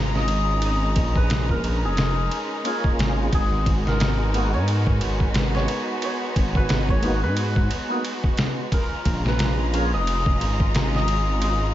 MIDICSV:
0, 0, Header, 1, 6, 480
1, 0, Start_track
1, 0, Tempo, 674157
1, 452, Time_signature, 4, 2, 24, 8
1, 8360, End_track
2, 0, Start_track
2, 0, Title_t, "Hammered dulcimer"
2, 0, Program_c, 0, 15
2, 0, Note_on_c, 0, 71, 90
2, 0, Note_on_c, 0, 75, 95
2, 113, Note_off_c, 0, 75, 0
2, 116, Note_on_c, 0, 75, 99
2, 463, Note_off_c, 0, 75, 0
2, 466, Note_on_c, 0, 75, 92
2, 829, Note_off_c, 0, 71, 0
2, 832, Note_on_c, 0, 71, 92
2, 1076, Note_on_c, 0, 70, 95
2, 1119, Note_off_c, 0, 71, 0
2, 1317, Note_on_c, 0, 68, 102
2, 2159, Note_off_c, 0, 75, 0
2, 2379, Note_off_c, 0, 68, 0
2, 2381, Note_on_c, 0, 68, 96
2, 2760, Note_off_c, 0, 70, 0
2, 2763, Note_on_c, 0, 70, 93
2, 3230, Note_on_c, 0, 73, 92
2, 3948, Note_off_c, 0, 73, 0
2, 3950, Note_on_c, 0, 73, 93
2, 4297, Note_off_c, 0, 73, 0
2, 4300, Note_on_c, 0, 73, 91
2, 4540, Note_off_c, 0, 68, 0
2, 4678, Note_on_c, 0, 71, 95
2, 4720, Note_off_c, 0, 70, 0
2, 4910, Note_off_c, 0, 73, 0
2, 4913, Note_on_c, 0, 73, 94
2, 5147, Note_off_c, 0, 71, 0
2, 5149, Note_on_c, 0, 71, 100
2, 6222, Note_on_c, 0, 70, 96
2, 6264, Note_off_c, 0, 71, 0
2, 6608, Note_on_c, 0, 71, 88
2, 6651, Note_off_c, 0, 70, 0
2, 6728, Note_off_c, 0, 73, 0
2, 7075, Note_on_c, 0, 75, 100
2, 7799, Note_off_c, 0, 75, 0
2, 7801, Note_on_c, 0, 75, 101
2, 8141, Note_off_c, 0, 75, 0
2, 8144, Note_on_c, 0, 75, 91
2, 8360, Note_off_c, 0, 71, 0
2, 8360, Note_off_c, 0, 75, 0
2, 8360, End_track
3, 0, Start_track
3, 0, Title_t, "Violin section"
3, 0, Program_c, 1, 48
3, 0, Note_on_c, 1, 56, 76
3, 0, Note_on_c, 1, 61, 69
3, 0, Note_on_c, 1, 65, 68
3, 0, Note_on_c, 1, 82, 83
3, 424, Note_off_c, 1, 65, 0
3, 459, Note_on_c, 1, 63, 69
3, 2344, Note_off_c, 1, 82, 0
3, 2345, Note_off_c, 1, 61, 0
3, 2367, Note_on_c, 1, 66, 69
3, 2373, Note_on_c, 1, 59, 80
3, 6181, Note_off_c, 1, 66, 0
3, 6184, Note_off_c, 1, 59, 0
3, 6185, Note_off_c, 1, 56, 0
3, 6187, Note_off_c, 1, 63, 0
3, 6218, Note_on_c, 1, 61, 65
3, 6219, Note_on_c, 1, 82, 81
3, 6220, Note_on_c, 1, 56, 74
3, 6221, Note_on_c, 1, 65, 74
3, 8360, Note_off_c, 1, 56, 0
3, 8360, Note_off_c, 1, 61, 0
3, 8360, Note_off_c, 1, 65, 0
3, 8360, Note_off_c, 1, 82, 0
3, 8360, End_track
4, 0, Start_track
4, 0, Title_t, "Tonewheel organ"
4, 0, Program_c, 2, 16
4, 1880, Note_on_c, 2, 58, 72
4, 1888, Note_on_c, 2, 61, 67
4, 1898, Note_on_c, 2, 65, 70
4, 1907, Note_on_c, 2, 68, 81
4, 2354, Note_off_c, 2, 58, 0
4, 2358, Note_off_c, 2, 61, 0
4, 2363, Note_off_c, 2, 65, 0
4, 2367, Note_off_c, 2, 68, 0
4, 3087, Note_on_c, 2, 58, 79
4, 3094, Note_on_c, 2, 59, 71
4, 3101, Note_on_c, 2, 63, 73
4, 3110, Note_on_c, 2, 66, 90
4, 3213, Note_off_c, 2, 58, 0
4, 3217, Note_off_c, 2, 59, 0
4, 3221, Note_off_c, 2, 63, 0
4, 3225, Note_off_c, 2, 66, 0
4, 4997, Note_on_c, 2, 58, 94
4, 5006, Note_on_c, 2, 59, 85
4, 5015, Note_on_c, 2, 63, 85
4, 5023, Note_on_c, 2, 66, 102
4, 5128, Note_off_c, 2, 58, 0
4, 5133, Note_off_c, 2, 59, 0
4, 5137, Note_off_c, 2, 63, 0
4, 5141, Note_off_c, 2, 66, 0
4, 5614, Note_on_c, 2, 58, 89
4, 5625, Note_on_c, 2, 59, 76
4, 5633, Note_on_c, 2, 63, 81
4, 5638, Note_on_c, 2, 66, 96
4, 5715, Note_off_c, 2, 58, 0
4, 5720, Note_off_c, 2, 59, 0
4, 5725, Note_off_c, 2, 63, 0
4, 5727, Note_off_c, 2, 66, 0
4, 6931, Note_on_c, 2, 58, 80
4, 6936, Note_on_c, 2, 61, 79
4, 6943, Note_on_c, 2, 65, 76
4, 6955, Note_on_c, 2, 68, 93
4, 7055, Note_off_c, 2, 58, 0
4, 7058, Note_off_c, 2, 61, 0
4, 7061, Note_off_c, 2, 65, 0
4, 7067, Note_off_c, 2, 68, 0
4, 8360, End_track
5, 0, Start_track
5, 0, Title_t, "Detuned saw bass"
5, 0, Program_c, 3, 39
5, 0, Note_on_c, 3, 32, 94
5, 673, Note_off_c, 3, 32, 0
5, 687, Note_on_c, 3, 34, 102
5, 1309, Note_on_c, 3, 29, 83
5, 1319, Note_off_c, 3, 34, 0
5, 1632, Note_off_c, 3, 29, 0
5, 2127, Note_on_c, 3, 32, 102
5, 2345, Note_off_c, 3, 32, 0
5, 2370, Note_on_c, 3, 32, 101
5, 3236, Note_on_c, 3, 44, 84
5, 3247, Note_off_c, 3, 32, 0
5, 3556, Note_off_c, 3, 44, 0
5, 3578, Note_on_c, 3, 32, 87
5, 4036, Note_off_c, 3, 32, 0
5, 4530, Note_on_c, 3, 32, 106
5, 5147, Note_on_c, 3, 44, 82
5, 5158, Note_off_c, 3, 32, 0
5, 5472, Note_off_c, 3, 44, 0
5, 6447, Note_on_c, 3, 34, 99
5, 7072, Note_on_c, 3, 29, 83
5, 7083, Note_off_c, 3, 34, 0
5, 7394, Note_off_c, 3, 29, 0
5, 7409, Note_on_c, 3, 32, 94
5, 8351, Note_off_c, 3, 32, 0
5, 8360, End_track
6, 0, Start_track
6, 0, Title_t, "Drums"
6, 110, Note_on_c, 9, 38, 38
6, 181, Note_off_c, 9, 38, 0
6, 199, Note_on_c, 9, 51, 70
6, 270, Note_off_c, 9, 51, 0
6, 440, Note_on_c, 9, 51, 84
6, 511, Note_off_c, 9, 51, 0
6, 682, Note_on_c, 9, 51, 77
6, 685, Note_on_c, 9, 36, 100
6, 753, Note_off_c, 9, 51, 0
6, 756, Note_off_c, 9, 36, 0
6, 823, Note_on_c, 9, 36, 91
6, 894, Note_off_c, 9, 36, 0
6, 925, Note_on_c, 9, 51, 88
6, 933, Note_on_c, 9, 38, 115
6, 996, Note_off_c, 9, 51, 0
6, 1004, Note_off_c, 9, 38, 0
6, 1062, Note_on_c, 9, 36, 102
6, 1133, Note_off_c, 9, 36, 0
6, 1167, Note_on_c, 9, 51, 66
6, 1238, Note_off_c, 9, 51, 0
6, 1404, Note_on_c, 9, 51, 76
6, 1412, Note_on_c, 9, 38, 100
6, 1475, Note_off_c, 9, 51, 0
6, 1483, Note_off_c, 9, 38, 0
6, 1648, Note_on_c, 9, 51, 64
6, 1719, Note_off_c, 9, 51, 0
6, 1887, Note_on_c, 9, 51, 86
6, 1958, Note_off_c, 9, 51, 0
6, 2023, Note_on_c, 9, 36, 97
6, 2095, Note_off_c, 9, 36, 0
6, 2131, Note_on_c, 9, 51, 71
6, 2139, Note_on_c, 9, 38, 116
6, 2202, Note_off_c, 9, 51, 0
6, 2210, Note_off_c, 9, 38, 0
6, 2368, Note_on_c, 9, 36, 116
6, 2368, Note_on_c, 9, 51, 85
6, 2439, Note_off_c, 9, 36, 0
6, 2439, Note_off_c, 9, 51, 0
6, 2608, Note_on_c, 9, 36, 101
6, 2608, Note_on_c, 9, 51, 71
6, 2679, Note_off_c, 9, 36, 0
6, 2680, Note_off_c, 9, 51, 0
6, 2756, Note_on_c, 9, 38, 48
6, 2827, Note_off_c, 9, 38, 0
6, 2849, Note_on_c, 9, 51, 91
6, 2857, Note_on_c, 9, 38, 112
6, 2921, Note_off_c, 9, 51, 0
6, 2929, Note_off_c, 9, 38, 0
6, 3092, Note_on_c, 9, 51, 65
6, 3163, Note_off_c, 9, 51, 0
6, 3331, Note_on_c, 9, 51, 85
6, 3402, Note_off_c, 9, 51, 0
6, 3466, Note_on_c, 9, 36, 90
6, 3537, Note_off_c, 9, 36, 0
6, 3567, Note_on_c, 9, 51, 74
6, 3639, Note_off_c, 9, 51, 0
6, 3704, Note_on_c, 9, 36, 85
6, 3775, Note_off_c, 9, 36, 0
6, 3805, Note_on_c, 9, 51, 88
6, 3812, Note_on_c, 9, 38, 113
6, 3876, Note_off_c, 9, 51, 0
6, 3884, Note_off_c, 9, 38, 0
6, 3951, Note_on_c, 9, 38, 39
6, 4022, Note_off_c, 9, 38, 0
6, 4046, Note_on_c, 9, 51, 70
6, 4117, Note_off_c, 9, 51, 0
6, 4287, Note_on_c, 9, 51, 89
6, 4358, Note_off_c, 9, 51, 0
6, 4529, Note_on_c, 9, 36, 106
6, 4530, Note_on_c, 9, 51, 74
6, 4600, Note_off_c, 9, 36, 0
6, 4601, Note_off_c, 9, 51, 0
6, 4665, Note_on_c, 9, 36, 95
6, 4736, Note_off_c, 9, 36, 0
6, 4764, Note_on_c, 9, 51, 91
6, 4772, Note_on_c, 9, 38, 115
6, 4835, Note_off_c, 9, 51, 0
6, 4843, Note_off_c, 9, 38, 0
6, 4903, Note_on_c, 9, 36, 105
6, 4974, Note_off_c, 9, 36, 0
6, 5003, Note_on_c, 9, 51, 64
6, 5074, Note_off_c, 9, 51, 0
6, 5245, Note_on_c, 9, 51, 91
6, 5316, Note_off_c, 9, 51, 0
6, 5385, Note_on_c, 9, 36, 92
6, 5456, Note_off_c, 9, 36, 0
6, 5487, Note_on_c, 9, 51, 75
6, 5558, Note_off_c, 9, 51, 0
6, 5728, Note_on_c, 9, 51, 89
6, 5799, Note_off_c, 9, 51, 0
6, 5865, Note_on_c, 9, 36, 93
6, 5936, Note_off_c, 9, 36, 0
6, 5963, Note_on_c, 9, 51, 65
6, 5970, Note_on_c, 9, 38, 122
6, 6034, Note_off_c, 9, 51, 0
6, 6042, Note_off_c, 9, 38, 0
6, 6208, Note_on_c, 9, 36, 107
6, 6209, Note_on_c, 9, 51, 87
6, 6279, Note_off_c, 9, 36, 0
6, 6281, Note_off_c, 9, 51, 0
6, 6447, Note_on_c, 9, 51, 75
6, 6448, Note_on_c, 9, 36, 100
6, 6518, Note_off_c, 9, 51, 0
6, 6519, Note_off_c, 9, 36, 0
6, 6592, Note_on_c, 9, 38, 47
6, 6663, Note_off_c, 9, 38, 0
6, 6686, Note_on_c, 9, 51, 85
6, 6694, Note_on_c, 9, 38, 115
6, 6757, Note_off_c, 9, 51, 0
6, 6765, Note_off_c, 9, 38, 0
6, 6933, Note_on_c, 9, 51, 68
6, 7004, Note_off_c, 9, 51, 0
6, 7171, Note_on_c, 9, 51, 91
6, 7243, Note_off_c, 9, 51, 0
6, 7306, Note_on_c, 9, 36, 94
6, 7378, Note_off_c, 9, 36, 0
6, 7413, Note_on_c, 9, 51, 73
6, 7485, Note_off_c, 9, 51, 0
6, 7548, Note_on_c, 9, 36, 98
6, 7619, Note_off_c, 9, 36, 0
6, 7651, Note_on_c, 9, 51, 87
6, 7659, Note_on_c, 9, 38, 119
6, 7722, Note_off_c, 9, 51, 0
6, 7730, Note_off_c, 9, 38, 0
6, 7794, Note_on_c, 9, 38, 39
6, 7865, Note_off_c, 9, 38, 0
6, 7888, Note_on_c, 9, 51, 69
6, 7960, Note_off_c, 9, 51, 0
6, 8128, Note_on_c, 9, 51, 92
6, 8200, Note_off_c, 9, 51, 0
6, 8360, End_track
0, 0, End_of_file